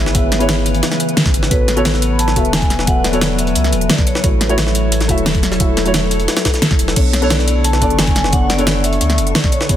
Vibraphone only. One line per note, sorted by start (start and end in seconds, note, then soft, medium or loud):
1.51 1.83 B4 loud
1.85 2.13 C#5 medium
2.13 2.19 B5 medium
2.19 2.54 A5 loud
2.53 2.88 G#5 loud
2.87 3.03 F#5 loud
3.04 3.40 D5 loud
3.38 3.91 E5 loud
3.89 4.07 D5 loud
4.07 5.39 C#5 medium
6.97 7.32 C#5 loud
7.31 7.62 D5 medium
7.65 8.00 A5 loud
7.99 8.34 G#5 loud
8.33 8.40 F#5 loud
8.50 8.85 D5 loud
8.84 9.37 E5 loud
9.35 9.53 D5 medium
9.52 9.77 C#5 medium